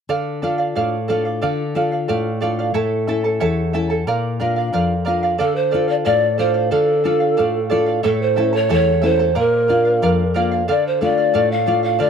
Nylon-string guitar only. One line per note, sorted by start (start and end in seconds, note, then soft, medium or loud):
0.09 0.73 D3 soft
0.43 0.96 D4 soft
0.43 0.96 F4 soft
0.43 0.96 A4 soft
0.76 1.40 A2 medium
1.10 1.62 D4 soft
1.10 1.63 F4 soft
1.10 1.63 A4 soft
1.43 2.07 D3 medium
1.75 2.28 D4 soft
1.75 2.29 F4 soft
1.75 2.29 A4 soft
2.09 2.73 A2 medium
2.42 2.69 D4 soft
2.42 2.69 F4 soft
2.42 2.69 A4 soft
2.74 3.39 A2 medium
3.08 3.61 C#4 soft
3.08 3.61 E4 soft
3.08 3.61 A4 soft
3.41 4.05 E2 medium
3.74 4.01 C#4 soft
3.74 4.01 E4 soft
3.74 4.01 A4 soft
4.07 4.71 A#2 medium
4.40 4.93 D4 soft
4.40 4.93 F4 soft
4.40 4.94 A#4 medium
4.73 5.38 F2 medium
5.07 5.33 D4 soft
5.07 5.34 F4 soft
5.07 5.34 A#4 soft
5.40 6.04 D3 medium
5.74 6.26 D4 soft
5.74 6.26 F4 soft
5.74 6.27 A4 soft
6.06 6.70 A2 medium
6.39 6.92 D4 soft
6.39 6.92 F4 soft
6.39 6.92 A4 soft
6.72 7.36 D3 medium
7.05 7.58 D4 soft
7.05 7.58 F4 soft
7.05 7.58 A4 soft
7.39 8.03 A2 medium
7.71 7.98 D4 soft
7.71 7.98 F4 soft
7.71 7.98 A4 medium
8.05 8.68 A2 medium
8.37 8.90 A3 soft
8.37 8.90 C#4 soft
8.37 8.90 E4 soft
8.70 9.34 E2 medium
9.03 9.29 A3 soft
9.03 9.29 C#4 soft
9.03 9.30 E4 soft
9.36 10.00 A#2 medium
9.69 10.22 A#3 soft
9.69 10.22 D4 soft
9.69 10.22 F4 soft
10.02 10.66 F2 medium
10.35 10.62 A#3 soft
10.35 10.62 D4 soft
10.35 10.62 F4 soft
10.69 11.32 D3 medium
11.02 11.54 A3 soft
11.02 11.54 D4 soft
11.02 11.54 F4 soft
11.35 11.98 A2 medium
11.67 12.10 A3 soft
11.67 12.10 D4 soft
11.67 12.10 F4 soft
12.00 12.10 D3 medium